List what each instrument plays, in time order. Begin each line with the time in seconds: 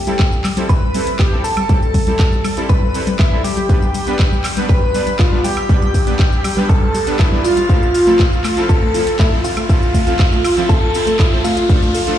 Already playing: clean electric guitar G4, riser
0.07 synth pluck G3, supersaw synth G3 C4 E4 A4, closed hi-hat, shaker
0.19 synth pluck G3, kick, clap, closed hi-hat, shaker
0.32 shaker
0.44 synth pluck G3, clap, open hi-hat, high woodblock, shaker
0.57 synth pluck G3, supersaw synth G3 C4 E4 A4, closed hi-hat, shaker
0.69 digital synth lead B4, clean electric guitar B4, kick, closed hi-hat, shaker
0.82 synth pluck G3
0.94 supersaw synth G3 C4 E4 A4, synth pluck G3, open hi-hat, shaker
1.07 closed hi-hat, shaker
1.19 synth pluck G3, digital synth lead G4, clean electric guitar G4, kick, clap, closed hi-hat, shaker
1.32 synth pluck G3, supersaw synth G3 C4 E4 A4
1.44 clean electric guitar A4, digital synth lead A4, open hi-hat, shaker
1.57 synth pluck G3, closed hi-hat, high woodblock, shaker
1.69 supersaw synth G3 C4 E4 A4, synth pluck G3, kick, closed hi-hat, shaker
1.82 shaker
1.94 synth pluck G3, kick, open hi-hat, shaker
2.07 supersaw synth G3 C4 E4 A4, synth pluck G3, closed hi-hat, shaker
2.19 kick, clap, closed hi-hat, shaker
2.32 synth pluck G3, shaker
2.44 synth pluck G3, open hi-hat, high woodblock, shaker
2.57 supersaw synth G3 C4 E4 A4, closed hi-hat, shaker
2.69 synth pluck G3, digital synth lead B4, clean electric guitar B4, kick, closed hi-hat, shaker
2.82 synth pluck G3
2.94 supersaw synth G3 C4 E4 A4, open hi-hat, shaker
3.07 synth pluck G3, closed hi-hat, shaker
3.19 synth pluck G3, digital synth lead E4, clean electric guitar E4, kick, clap, closed hi-hat, shaker
3.32 supersaw synth G3 C4 E4 A4
3.44 synth pluck G3, digital synth lead G4, clean electric guitar G4, open hi-hat, shaker
3.57 synth pluck G3, closed hi-hat, shaker
3.69 supersaw synth G3 B3 D4 B4, kick, closed hi-hat, shaker
3.82 synth pluck G3, shaker
3.94 synth pluck G3, open hi-hat, shaker
4.07 supersaw synth G3 B3 D4 B4, closed hi-hat, shaker
4.19 synth pluck G3, kick, clap, closed hi-hat, shaker
4.32 synth pluck G3, shaker
4.44 clap, open hi-hat, high woodblock, shaker
4.57 supersaw synth G3 B3 D4 B4, synth pluck G3, closed hi-hat, shaker
4.69 synth pluck G3, digital synth lead B4, clean electric guitar B4, kick, closed hi-hat, shaker
4.94 supersaw synth G3 B3 D4 B4, synth pluck G3, open hi-hat, shaker
5.07 synth pluck G3, closed hi-hat, shaker
5.19 digital synth lead F4, clean electric guitar F4, kick, clap, closed hi-hat, shaker
5.32 supersaw synth G3 B3 D4 B4, synth pluck G3
5.44 synth pluck G3, digital synth lead G4, clean electric guitar G4, open hi-hat, shaker
5.57 closed hi-hat, high woodblock, shaker
5.69 supersaw synth G3 B3 D4 B4, synth pluck G3, kick, closed hi-hat, shaker
5.82 synth pluck G3, shaker
5.94 kick, open hi-hat, shaker
6.07 supersaw synth G3 B3 D4 B4, synth pluck G3, closed hi-hat, shaker
6.19 synth pluck G3, kick, clap, closed hi-hat, shaker
6.32 shaker
6.44 synth pluck G3, open hi-hat, high woodblock, shaker
6.57 supersaw synth G3 B3 D4 B4, synth pluck G3, closed hi-hat, shaker
6.69 digital synth lead A4, clean electric guitar A4, kick, closed hi-hat, shaker
6.82 synth pluck G3
6.94 synth pluck G3, open hi-hat, shaker
7.07 supersaw synth G3 B3 D4 B4, closed hi-hat, shaker
7.19 synth pluck G3, digital synth lead E4, clean electric guitar E4, kick, clap, closed hi-hat, shaker
7.32 supersaw synth G3 B3 D4 B4, synth pluck G3
7.44 digital synth lead F4, clean electric guitar F4, open hi-hat, shaker
7.57 synth pluck G3, closed hi-hat, shaker
7.69 supersaw synth F3 C4 E4 A4, synth pluck A3, kick, closed hi-hat, shaker
7.82 synth pluck F4, shaker
7.95 open hi-hat, shaker
8.07 supersaw synth F3 C4 E4 A4, synth pluck A3, closed hi-hat, shaker
8.19 synth pluck F4, kick, clap, closed hi-hat, shaker
8.32 shaker
8.44 synth pluck A3, clap, open hi-hat, high woodblock, shaker
8.57 supersaw synth F3 C4 E4 A4, synth pluck F4, closed hi-hat, shaker
8.69 digital synth lead A4, clean electric guitar A4, kick, closed hi-hat, shaker
8.82 synth pluck A3
8.94 supersaw synth F3 C4 E4 A4, synth pluck F4, open hi-hat, shaker
9.07 closed hi-hat, shaker
9.19 synth pluck A3, digital synth lead E4, clean electric guitar E4, kick, clap, closed hi-hat, shaker
9.32 supersaw synth F3 C4 E4 A4, synth pluck F4
9.44 digital synth lead F4, clean electric guitar F4, open hi-hat, shaker
9.57 synth pluck A3, closed hi-hat, high woodblock, shaker
9.69 supersaw synth F3 C4 E4 A4, synth pluck F4, kick, closed hi-hat, shaker
9.82 shaker
9.94 synth pluck A3, kick, open hi-hat, shaker
10.07 supersaw synth F3 C4 E4 A4, synth pluck F4, closed hi-hat, shaker
10.19 kick, clap, closed hi-hat, shaker
10.32 synth pluck A3, shaker
10.44 synth pluck F4, open hi-hat, high woodblock, shaker
10.57 supersaw synth F3 C4 E4 A4, closed hi-hat, shaker
10.69 synth pluck A3, clean electric guitar A4, digital synth lead A4, kick, closed hi-hat, shaker
10.82 synth pluck F4
10.94 supersaw synth F3 C4 E4 A4, open hi-hat, shaker
11.07 synth pluck A3, closed hi-hat, shaker
11.19 clean electric guitar E4, digital synth lead E4, synth pluck F4, kick, clap, closed hi-hat, shaker
11.32 supersaw synth F3 C4 E4 A4
11.44 synth pluck A3, clean electric guitar F4, digital synth lead F4, open hi-hat, shaker
11.57 synth pluck F4, closed hi-hat, shaker
11.69 supersaw synth F3 A3 D4 A4, kick, closed hi-hat, shaker
11.82 synth pluck A3, shaker
11.95 synth pluck A4, open hi-hat, shaker
12.07 supersaw synth F3 A3 D4 A4, closed hi-hat, shaker